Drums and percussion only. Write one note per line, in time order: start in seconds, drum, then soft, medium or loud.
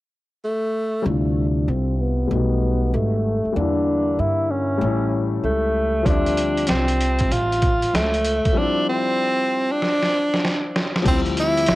6.06 kick loud
6.06 closed hi-hat medium
6.26 closed hi-hat soft
6.37 closed hi-hat medium
6.57 closed hi-hat soft
6.67 snare medium
6.67 closed hi-hat medium
6.88 closed hi-hat medium
7.01 closed hi-hat medium
7.19 kick medium
7.19 closed hi-hat soft
7.32 closed hi-hat medium
7.52 closed hi-hat soft
7.62 kick medium
7.62 closed hi-hat medium
7.82 closed hi-hat soft
7.95 snare medium
7.95 closed hi-hat medium
8.14 closed hi-hat soft
8.25 closed hi-hat medium
8.45 kick medium
8.45 closed hi-hat soft
9.82 snare soft
10.03 snare soft
10.34 snare medium
10.45 snare medium
10.76 snare medium
10.96 snare medium
11.05 kick loud
11.05 closed hi-hat medium
11.05 crash medium
11.26 closed hi-hat soft
11.37 closed hi-hat medium
11.57 closed hi-hat soft
11.66 snare loud
11.66 closed hi-hat medium